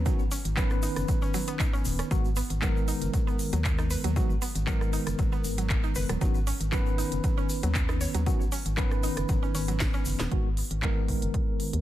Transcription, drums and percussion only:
0.06 kick, closed hi-hat, shaker
0.19 shaker
0.31 open hi-hat, shaker
0.45 closed hi-hat, shaker
0.57 kick, clap, closed hi-hat, shaker
0.70 cross-stick, shaker
0.83 open hi-hat, shaker
0.96 cross-stick, closed hi-hat, shaker
1.08 kick, closed hi-hat, shaker
1.22 shaker
1.34 open hi-hat, shaker
1.47 closed hi-hat, shaker
1.59 kick, clap, closed hi-hat, shaker
1.74 shaker
1.85 open hi-hat, shaker
1.99 cross-stick, closed hi-hat, shaker
2.11 kick, closed hi-hat, shaker
2.25 shaker
2.36 open hi-hat, shaker
2.50 closed hi-hat, shaker
2.62 kick, clap, closed hi-hat, shaker
2.77 shaker
2.88 open hi-hat, shaker
3.02 closed hi-hat, shaker
3.14 kick, closed hi-hat, shaker
3.28 shaker
3.39 open hi-hat, shaker
3.53 closed hi-hat, shaker
3.64 kick, clap, closed hi-hat, shaker
3.78 cross-stick, shaker
3.91 open hi-hat, shaker
4.04 closed hi-hat, shaker
4.16 kick, closed hi-hat, shaker
4.30 shaker
4.42 open hi-hat, shaker
4.55 closed hi-hat, shaker
4.67 kick, clap, closed hi-hat, shaker
4.81 cross-stick, shaker
4.93 open hi-hat, shaker
5.07 cross-stick, closed hi-hat, shaker
5.19 kick, closed hi-hat, shaker
5.32 shaker
5.44 open hi-hat, shaker
5.58 closed hi-hat, shaker
5.70 kick, clap, closed hi-hat, shaker
5.84 shaker
5.95 open hi-hat, shaker
6.09 cross-stick, closed hi-hat, shaker
6.21 kick, closed hi-hat, shaker
6.34 shaker
6.47 open hi-hat, shaker
6.61 closed hi-hat, shaker
6.72 kick, clap, closed hi-hat, shaker
6.86 shaker
6.98 open hi-hat, shaker
7.12 closed hi-hat, shaker
7.24 kick, closed hi-hat, shaker
7.38 shaker
7.49 open hi-hat, shaker
7.63 closed hi-hat, shaker
7.75 kick, clap, closed hi-hat, shaker
7.89 cross-stick, shaker
8.01 open hi-hat, shaker
8.14 closed hi-hat, shaker
8.26 kick, closed hi-hat, shaker
8.41 shaker
8.52 open hi-hat, shaker
8.66 closed hi-hat, shaker
8.77 kick, clap, closed hi-hat, shaker
8.91 cross-stick, shaker
9.03 open hi-hat, shaker
9.17 cross-stick, closed hi-hat, shaker
9.29 kick, closed hi-hat, shaker
9.43 shaker
9.55 open hi-hat, shaker
9.68 closed hi-hat, shaker
9.80 kick, snare, clap, closed hi-hat, shaker
9.93 shaker
10.05 open hi-hat, shaker
10.20 snare, closed hi-hat, shaker
10.32 kick, closed hi-hat
10.57 open hi-hat
10.71 closed hi-hat
10.82 kick, clap, closed hi-hat
11.08 kick, open hi-hat
11.22 closed hi-hat
11.34 kick, closed hi-hat
11.60 open hi-hat
11.73 closed hi-hat

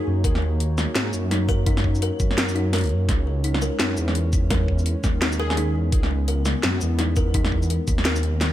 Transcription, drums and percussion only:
0.24 kick, closed hi-hat
0.35 snare
0.60 closed hi-hat
0.78 snare, shaker
0.95 snare, closed hi-hat
1.13 shaker
1.31 snare, closed hi-hat
1.49 kick, shaker
1.66 kick, closed hi-hat
1.77 snare
1.84 kick
1.95 shaker
2.02 closed hi-hat
2.20 kick, shaker
2.31 snare
2.38 snare, closed hi-hat
2.49 shaker
2.56 closed hi-hat
2.73 snare, closed hi-hat
2.76 closed hi-hat
2.78 closed hi-hat
2.81 closed hi-hat
2.84 closed hi-hat
2.86 closed hi-hat
2.87 closed hi-hat
2.89 closed hi-hat
3.09 kick, snare, closed hi-hat
3.44 closed hi-hat
3.54 snare
3.62 shaker
3.80 snare, closed hi-hat
3.97 shaker
4.08 snare
4.15 closed hi-hat
4.33 kick, shaker
4.50 kick, snare, closed hi-hat
4.68 kick
4.79 shaker
4.86 closed hi-hat
5.04 kick, snare, shaker
5.22 snare, closed hi-hat
5.32 shaker
5.50 snare
5.57 closed hi-hat
5.92 kick, closed hi-hat
6.03 snare
6.28 closed hi-hat
6.46 snare, shaker
6.63 snare, closed hi-hat
6.81 shaker
6.99 snare, closed hi-hat
7.16 kick, shaker
7.34 kick, closed hi-hat
7.45 snare
7.52 kick
7.63 shaker
7.70 closed hi-hat
7.88 kick, closed hi-hat, shaker
7.98 snare
8.05 snare, closed hi-hat
8.16 shaker
8.23 closed hi-hat
8.41 snare, closed hi-hat

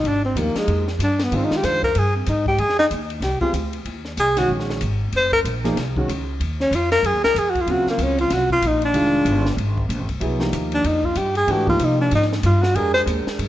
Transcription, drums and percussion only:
0.05 ride
0.37 hi-hat pedal, ride
0.56 snare, ride
0.68 ride
0.88 snare
1.00 hi-hat pedal, ride
1.19 snare, ride
1.32 ride
1.51 snare
1.63 snare, hi-hat pedal, ride
1.83 kick
1.95 ride
2.26 hi-hat pedal, ride
2.46 kick
2.58 ride
2.70 snare
2.80 snare
2.91 hi-hat pedal, ride
3.10 ride
3.22 snare, ride
3.41 kick
3.54 hi-hat pedal, ride
3.73 ride
3.86 ride
4.05 snare
4.17 hi-hat pedal, ride
4.37 snare, ride
4.60 snare
4.70 snare
4.81 hi-hat pedal, ride
5.13 ride
5.32 kick
5.45 hi-hat pedal, ride
5.65 snare, ride
5.77 snare, ride
5.96 kick
6.09 hi-hat pedal, ride
6.41 ride
6.60 snare
6.73 hi-hat pedal, ride
6.92 snare, ride
7.04 ride
7.24 snare
7.36 hi-hat pedal, ride
7.55 kick, ride
7.67 ride
7.87 snare
7.99 hi-hat pedal, ride
8.18 ride
8.30 snare, ride
8.50 kick
8.62 hi-hat pedal, ride
8.82 ride
8.94 ride
9.26 hi-hat pedal, ride
9.46 snare
9.58 ride
9.77 kick
9.90 hi-hat pedal, ride
10.09 kick, ride
10.21 ride
10.40 snare
10.53 hi-hat pedal, ride
10.72 ride
10.84 ride
11.04 kick
11.15 hi-hat pedal, ride
11.35 ride
11.48 ride
11.67 kick
11.79 hi-hat pedal, ride
12.11 ride
12.22 snare
12.33 snare
12.43 hi-hat pedal, ride
12.63 snare
12.75 ride
12.95 snare
13.07 hi-hat pedal, ride
13.27 snare
13.39 ride

